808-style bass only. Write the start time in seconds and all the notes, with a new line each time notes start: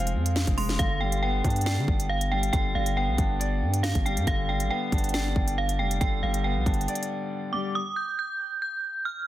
Already playing: F1
0.14 F2
0.47 F1
0.79 G1
1.44 G2
1.78 D3
1.88 G1
2.53 G1
2.75 G1
3.08 B1
3.18 G1
3.62 G2
3.95 G1
4.17 G2
4.27 G1
4.60 G#1
4.92 G1
5.36 G1
5.79 F1
6.01 G1
6.23 G1
6.56 B1
6.66 G1